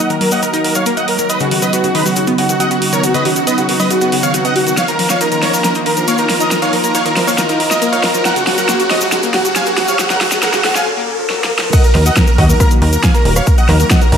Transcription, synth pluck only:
0.10 0.17 D#3 medium
0.21 0.28 F#3 loud
0.32 0.36 A#3 medium
0.43 0.45 D#3 medium
0.53 0.58 D#4 loud
0.64 0.71 D#3 medium
0.75 0.80 F#3 medium
0.86 0.91 A#3 loud
0.97 1.04 D#4 medium
1.19 1.25 F#3 medium
1.40 1.45 C#3 loud
1.51 1.54 D#3 medium
1.62 1.65 F#3 medium
1.73 1.78 B3 loud
1.84 1.91 C#3 medium
1.95 2.01 D#3 loud
2.06 2.10 F#3 medium
2.17 2.19 C#3 medium
2.27 2.32 B3 loud
2.38 2.45 C#3 medium
2.49 2.54 D#3 medium
2.60 2.64 F#3 loud
2.71 2.78 B3 medium
2.93 2.99 D#3 medium
3.14 3.19 C#3 loud
3.25 3.28 D#3 medium
3.36 3.39 F#3 medium
3.47 3.51 B3 loud
3.58 3.65 C#3 medium
3.69 3.75 D#3 medium
3.80 3.84 F#3 medium
3.90 3.93 C#3 medium
4.01 4.06 B3 loud
4.12 4.19 C#3 medium
4.23 4.28 D#3 medium
4.34 4.38 F#3 loud
4.45 4.51 B3 medium
4.66 4.73 D#3 medium
4.88 4.93 D#3 loud
4.99 5.02 F3 medium
5.10 5.13 A#3 medium
5.21 5.25 D#4 loud
5.32 5.38 D#3 medium
5.43 5.49 F3 loud
5.53 5.58 A#3 medium
5.64 5.67 D#3 medium
5.75 5.80 D#4 loud
5.86 5.93 D#3 medium
5.97 6.01 F3 medium
6.08 6.12 A#3 loud
6.19 6.25 D#4 medium
6.40 6.47 F3 medium
6.62 6.67 D#3 loud
6.73 6.76 F3 medium
6.84 6.87 A#3 medium
6.95 6.99 D#4 loud
7.06 7.12 D#3 medium
7.16 7.23 F3 loud
7.27 7.32 A#3 medium
7.38 7.41 D#3 medium
7.49 7.54 D#4 loud
7.60 7.67 D#3 medium
7.71 7.75 F3 medium
7.82 7.86 A#3 loud
7.93 7.99 D#4 medium
8.14 8.21 F3 medium
8.36 8.41 C#3 loud
8.47 8.50 F3 medium
8.58 8.61 F#3 medium
8.69 8.73 A#3 loud
8.80 8.86 C#3 medium
8.90 8.97 F3 loud
9.01 9.06 F#3 medium
9.12 9.15 C#3 medium
9.23 9.28 A#3 loud
9.34 9.41 C#3 medium
9.45 9.49 F3 medium
9.56 9.60 F#3 loud
9.67 9.73 A#3 medium
9.88 9.95 F3 medium
10.10 10.15 C#3 loud
10.21 10.24 F3 medium
10.32 10.34 F#3 medium
10.43 10.47 A#3 loud
10.54 10.60 C#3 medium
10.64 10.71 F3 loud
10.75 10.80 F#3 medium
10.86 10.89 C#3 medium
10.97 11.01 A#3 loud
11.08 11.15 C#3 medium
11.19 11.23 F3 medium
11.30 11.34 F#3 loud
11.40 11.47 A#3 medium
11.62 11.69 F3 medium

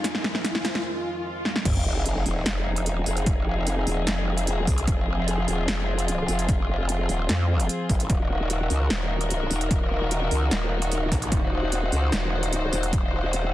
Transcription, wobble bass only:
1.65 2.24 F1 medium
2.26 2.44 D#1 loud
2.46 2.88 F1 loud
2.88 3.05 E1 loud
3.06 3.25 F1 loud
3.26 3.85 F1 loud
3.87 4.05 D#1 loud
4.07 4.49 F1 loud
4.49 4.66 E1 loud
4.67 4.86 C2 loud
4.88 5.46 F1 loud
5.48 5.67 D#1 loud
5.68 6.27 F1 loud
6.28 6.47 F1 loud
6.49 7.07 F1 loud
7.09 7.28 D#1 loud
7.29 7.68 F2 loud
7.89 8.08 G#1 loud
8.10 8.69 D#1 loud
8.70 8.89 C#2 loud
8.90 9.49 D#1 loud
9.51 9.69 D#1 loud
9.71 10.30 D#1 medium
10.31 10.50 C#2 loud
10.51 10.93 D#1 loud
10.93 11.10 D1 loud
11.12 11.30 A#1 loud
11.32 11.91 D#1 loud
11.92 12.11 C#2 loud
12.12 12.71 D#1 loud
12.73 12.91 D#1 loud
12.93 13.52 D#1 loud

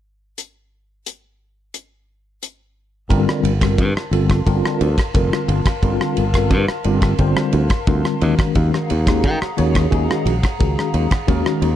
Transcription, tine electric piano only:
3.09 3.50 D3 loud
3.09 3.50 G3 medium
3.09 3.50 C4 medium
3.09 3.51 F4 medium
3.09 3.51 A#4 loud
3.60 3.88 D3 medium
3.60 3.88 G3 medium
3.60 3.88 C4 medium
3.60 3.88 F4 medium
3.60 3.89 A#4 medium
3.96 4.04 F4 soft
3.96 4.05 A#4 soft
4.11 4.39 D3 medium
4.11 4.39 G3 medium
4.11 4.39 C4 medium
4.11 4.39 F4 medium
4.11 4.39 A4 loud
4.45 4.86 D3 loud
4.45 4.87 G3 medium
4.45 4.87 C4 medium
4.45 4.87 F4 medium
4.45 4.87 A#4 medium
4.97 5.06 F4 soft
4.97 5.06 A4 soft
5.15 5.69 D3 medium
5.15 5.69 G3 medium
5.15 5.69 C4 medium
5.15 5.69 F4 medium
5.15 5.69 A#4 medium
5.83 6.23 D3 medium
5.83 6.23 G3 medium
5.83 6.23 C4 medium
5.83 6.24 F4 medium
5.83 6.24 A#4 loud
6.33 6.61 D3 medium
6.33 6.61 G3 medium
6.33 6.61 C4 medium
6.33 6.61 F4 medium
6.33 6.62 A#4 medium
6.69 6.77 C5 soft
6.85 7.12 D3 medium
6.85 7.12 G3 medium
6.85 7.12 C4 medium
6.85 7.12 F4 medium
6.85 7.13 G4 medium
7.19 7.59 D3 medium
7.19 7.60 G3 loud
7.19 7.60 C4 medium
7.19 7.60 F4 medium
7.19 7.60 C5 loud
7.70 7.78 F4 soft
7.70 7.79 G4 soft
7.87 8.21 D3 medium
7.87 8.21 G3 medium
7.87 8.21 C4 medium
7.87 8.22 F4 medium
7.87 8.21 A#4 medium
8.21 8.89 D#3 medium
8.21 8.90 G#3 medium
8.21 8.90 C#4 medium
8.21 8.90 F#4 medium
8.21 8.90 A#4 medium
9.07 9.34 D#3 medium
9.07 9.34 G#3 medium
9.07 9.34 C#4 medium
9.07 9.34 F#4 medium
9.07 9.34 G#4 medium
9.42 9.49 F#4 soft
9.42 9.50 A#4 soft
9.57 9.84 D#3 medium
9.57 9.84 G#3 medium
9.57 9.85 C#4 medium
9.57 9.85 F#4 medium
9.57 9.85 C#5 loud
9.91 10.32 D#3 medium
9.91 10.32 G#3 medium
9.91 10.32 C#4 medium
9.91 10.32 F#4 medium
9.91 10.32 G#4 loud
10.41 10.50 F#4 soft
10.41 10.51 C5 soft
10.59 11.13 D#3 medium
10.59 11.14 G#3 medium
10.59 11.14 C#4 medium
10.59 11.14 F#4 medium
10.59 11.14 G#4 medium
11.27 11.68 D#3 medium
11.27 11.68 G#3 medium
11.27 11.69 C#4 medium
11.27 11.69 F#4 medium
11.27 11.69 A#4 loud

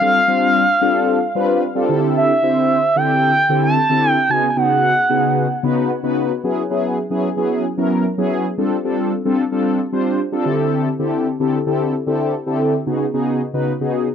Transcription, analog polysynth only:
0.01 0.19 G3 medium
0.01 0.20 C4 medium
0.01 0.20 D4 medium
0.01 0.20 F4 medium
0.01 0.20 A4 medium
0.28 0.65 G3 medium
0.28 0.65 C4 medium
0.28 0.65 D4 medium
0.28 0.65 F4 medium
0.28 0.65 C5 medium
0.81 1.18 G3 medium
0.81 1.18 C4 medium
0.81 1.18 D4 medium
0.81 1.19 F4 medium
0.81 1.19 A4 loud
1.35 1.63 G3 loud
1.35 1.63 C4 medium
1.35 1.63 D4 medium
1.35 1.63 F4 medium
1.35 1.63 B4 loud
1.75 1.89 G3 medium
1.75 1.88 C4 loud
1.75 1.89 D4 medium
1.75 1.89 F4 medium
1.75 1.88 A4 loud
1.89 2.32 D3 loud
1.89 2.32 C4 medium
1.89 2.32 E4 medium
1.89 2.32 G4 medium
1.89 2.32 A4 loud
2.42 2.79 D3 medium
2.42 2.79 C4 medium
2.42 2.79 E4 medium
2.42 2.80 G4 medium
2.42 2.80 C5 medium
2.96 3.33 D3 medium
2.96 3.33 C4 medium
2.96 3.33 E4 medium
2.96 3.33 G4 medium
2.96 3.33 A4 medium
3.49 3.77 D3 medium
3.49 3.77 C4 medium
3.49 3.77 E4 medium
3.49 3.77 G4 medium
3.49 3.77 A4 medium
3.89 4.17 D3 medium
3.89 4.17 C4 medium
3.89 4.17 E4 medium
3.89 4.18 G4 medium
3.89 4.18 A4 medium
4.29 4.48 C#3 medium
4.29 4.48 B3 medium
4.29 4.48 D#4 medium
4.29 4.48 F#4 medium
4.29 4.48 G#4 medium
4.56 4.93 C#3 medium
4.56 4.93 B3 medium
4.56 4.93 D#4 medium
4.56 4.93 F#4 medium
4.56 4.94 G#4 medium
5.09 5.47 C#3 medium
5.09 5.47 B3 medium
5.09 5.47 D#4 medium
5.09 5.47 F#4 medium
5.09 5.47 G#4 medium
5.63 5.91 C#3 loud
5.63 5.91 B3 medium
5.63 5.91 D#4 medium
5.63 5.91 F#4 medium
5.63 5.91 B4 loud
6.03 6.31 C#3 medium
6.03 6.31 B3 medium
6.03 6.31 D#4 medium
6.03 6.31 F#4 medium
6.03 6.32 B4 loud
6.44 6.62 F#3 medium
6.44 6.62 B3 medium
6.44 6.62 C#4 medium
6.44 6.63 E4 medium
6.44 6.63 G#4 loud
6.70 6.98 F#3 medium
6.70 6.98 B3 medium
6.70 6.98 C#4 medium
6.70 6.98 E4 medium
6.70 6.99 G#4 medium
7.10 7.29 F#3 medium
7.10 7.29 B3 medium
7.10 7.29 C#4 medium
7.10 7.29 E4 medium
7.10 7.29 G#4 loud
7.36 7.65 F#3 medium
7.36 7.65 B3 medium
7.36 7.65 C#4 medium
7.36 7.65 E4 medium
7.36 7.65 G#4 loud
7.77 8.05 F#3 medium
7.77 8.05 B3 medium
7.77 8.06 C#4 medium
7.77 8.06 E4 medium
7.77 8.06 A#4 loud
8.18 8.46 F#3 loud
8.18 8.46 B3 medium
8.18 8.46 C#4 medium
8.18 8.46 E4 medium
8.18 8.46 G#4 loud
8.58 8.76 G3 medium
8.58 8.77 C4 medium
8.58 8.77 D4 medium
8.58 8.77 F4 medium
8.58 8.77 A4 medium
8.84 9.12 G3 medium
8.84 9.12 C4 medium
8.84 9.13 D4 medium
8.84 9.13 F4 medium
8.84 9.13 A4 medium
9.25 9.44 G3 loud
9.25 9.44 C4 medium
9.25 9.44 D4 medium
9.25 9.44 F4 medium
9.25 9.44 A4 loud
9.51 9.79 G3 medium
9.51 9.79 C4 medium
9.51 9.80 D4 medium
9.51 9.80 F4 medium
9.51 9.80 A4 loud
9.92 10.20 G3 loud
9.92 10.20 C4 medium
9.92 10.20 D4 medium
9.92 10.20 F4 medium
9.92 10.20 C5 loud
10.32 10.46 G3 loud
10.32 10.45 C4 medium
10.32 10.46 D4 medium
10.32 10.46 F4 medium
10.32 10.45 A4 loud
10.45 10.88 D3 medium
10.45 10.89 C4 medium
10.45 10.89 E4 medium
10.45 10.89 G4 medium
10.45 10.89 A4 loud
10.99 11.27 D3 medium
10.99 11.27 C4 medium
10.99 11.27 E4 medium
10.99 11.27 G4 medium
10.99 11.27 A4 medium
11.40 11.58 D3 medium
11.40 11.58 C4 medium
11.40 11.58 E4 medium
11.40 11.58 G4 medium
11.40 11.58 A4 loud
11.66 11.94 D3 medium
11.66 11.94 C4 medium
11.66 11.94 E4 medium
11.66 11.94 G4 medium
11.66 11.94 A4 loud
12.06 12.34 D3 medium
12.06 12.34 C4 medium
12.06 12.34 E4 medium
12.06 12.35 G4 medium
12.06 12.35 A4 loud
12.46 12.74 D3 medium
12.46 12.74 C4 medium
12.46 12.74 E4 medium
12.46 12.75 G4 medium
12.46 12.75 A4 loud
12.86 13.05 C#3 medium
12.86 13.05 B3 medium
12.86 13.05 D#4 medium
12.86 13.05 F#4 medium
12.86 13.05 G#4 medium
13.14 13.41 C#3 medium
13.14 13.41 B3 medium
13.14 13.42 D#4 medium
13.14 13.42 F#4 medium
13.14 13.42 G#4 loud
13.53 13.72 C#3 medium
13.53 13.72 B3 medium
13.53 13.72 D#4 medium
13.53 13.72 F#4 medium
13.53 13.72 B4 medium
13.80 14.08 C#3 medium
13.80 14.08 B3 medium
13.80 14.08 D#4 medium
13.80 14.09 F#4 medium
13.80 14.09 G#4 medium

